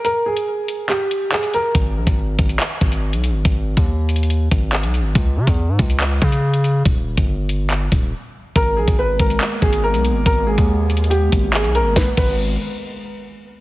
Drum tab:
CC |------------------------------------------------|------------------------------------------------|------------------------------------------------|------------------------------------------------|
HH |x--------x--------x-----x-----x--------x--x-----|x--------x--------x--x--x--------x-----x--x-----|x--------x--------x-x-x-x-----x--------x--x-----|x--------x--------x--x--x--------x-----x--x-----|
CP |------------------------x-----------x-----------|------------------------x-----------------------|------------------------------------x-----------|------------------------x-----------------------|
SD |------------------------------------------------|------------------------------------------------|------------------------------------------------|------------------------------------------------|
BD |------------------------------------------------|o--------o--------o-----------o-----------------|o--------o--------------------o-----------------|o--------o--------o-----------o-----------------|

CC |------------------------------------------------|------------------------------------------------|------------------------------------------------|------x-----------------------------------------|
HH |x--------x--------x-----x-----x-----------------|x--------x--------x--x--x--------x-----x--x-----|x--------x--------x-x-x-x-----x--------x--x-----|------------------------------------------------|
CP |------------------------x-----------------------|------------------------x-----------------------|------------------------------------x-----------|------------------------------------------------|
SD |------------------------------------------------|------------------------------------------------|------------------------------------------------|o-----------------------------------------------|
BD |o--------o--------------------o-----------------|o--------o--------o-----------o-----------------|o--------o--------------------o-----------------|o-----o-----------------------------------------|